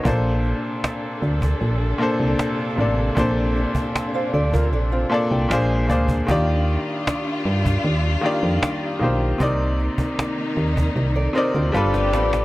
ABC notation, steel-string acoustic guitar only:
X:1
M:4/4
L:1/16
Q:1/4=77
K:Bb
V:1 name="Steel-string acoustic guitar"
z16 | z4 z [cf] [Ad] [FB] [DA] [CF]3 z4 | z16 | z8 z [Ad] [Gc] [FB] [F=B] [DG]3 |]